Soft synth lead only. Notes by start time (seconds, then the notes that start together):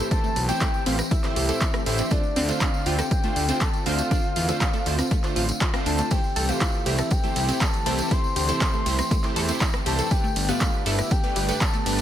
0.11 A5
0.48 G5
0.86 F5
1.11 E5
1.86 E5
2.11 D5
2.48 F5
2.86 G5
3.61 A5
3.86 F5
5.86 A5
6.11 G5
6.49 F5
6.86 E5
7.11 G5
7.61 A5
8.11 C6
9.86 A5
10.11 G5
10.48 F5
10.86 E5
11.11 G5
11.61 A5